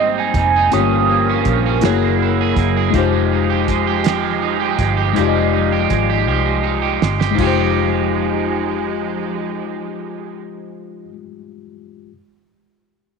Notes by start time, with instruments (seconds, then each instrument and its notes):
Already playing: fingered electric bass G#1, clean electric guitar G#2 G3 D#4, string section G3 C4 D#4, tine electric piano A#3 D#4 C5, soft synth lead D#5
0.00 clean electric guitar C4
0.18 clean electric guitar D#4, soft synth lead G#5
0.34 fingered electric bass F1, clean electric guitar G3, soft synth lead G#5, kick, closed hi-hat
0.56 clean electric guitar D#4
0.70 fingered electric bass G1, clean electric guitar G2 C#4, string section G3 C#4 F4 A#4, tine electric piano A3 C#4 F4 G4 C#5, soft synth lead D#6, closed hi-hat
0.76 tine electric piano A#3
0.91 clean electric guitar F3
1.09 clean electric guitar A#3
1.29 clean electric guitar C#4
1.45 fingered electric bass A#1, clean electric guitar F3, kick, closed hi-hat
1.66 clean electric guitar C#4
1.81 fingered electric bass F#1, string section F#3 G#3 E4, clean electric guitar F#3 G#4, tine electric piano A3 E4 F#4 G#4, snare, closed hi-hat
1.85 tine electric piano A#3 C#5
2.03 clean electric guitar A#3
2.22 clean electric guitar E4
2.41 clean electric guitar G#4
2.56 fingered electric bass F#1, clean electric guitar A#3, kick, closed hi-hat
2.76 clean electric guitar G#4
2.91 string section F3 D#4 G4, clean electric guitar F3, tine electric piano G#3 D#4 F4, kick, closed hi-hat
2.95 fingered electric bass F1, clean electric guitar G4, tine electric piano G4 C5
3.13 clean electric guitar G#3
3.32 clean electric guitar D#4
3.50 clean electric guitar G4
3.68 clean electric guitar G#3, kick, closed hi-hat
3.87 clean electric guitar G4
4.04 clean electric guitar F3 G4, snare, closed hi-hat
4.24 clean electric guitar G#3
4.42 clean electric guitar D#4
4.60 clean electric guitar G4
4.79 fingered electric bass G1, clean electric guitar G#3, kick, closed hi-hat
4.97 clean electric guitar G4
5.13 clean electric guitar F3 G4, tine electric piano G#3 D#4 F4, closed hi-hat
5.18 fingered electric bass F1, tine electric piano G4 D5
5.28 tine electric piano D#5
5.36 clean electric guitar G#3
5.54 clean electric guitar D#4
5.72 clean electric guitar G4
5.90 fingered electric bass G#1, clean electric guitar G#3, kick, closed hi-hat
6.10 clean electric guitar G4
6.27 fingered electric bass C2, clean electric guitar F3 G4
6.46 clean electric guitar G#3
6.63 clean electric guitar D#4
6.82 clean electric guitar G4
7.02 fingered electric bass G1, clean electric guitar G#3, snare
7.20 clean electric guitar G4, snare
7.31 clean electric guitar F3, tine electric piano G#3
7.35 clean electric guitar G#3, string section G#3, tine electric piano D#4, kick, crash
7.39 fingered electric bass F1, string section F3 D#4 G4, clean electric guitar D#4, tine electric piano F4
7.43 tine electric piano G4 C5, clean electric guitar G4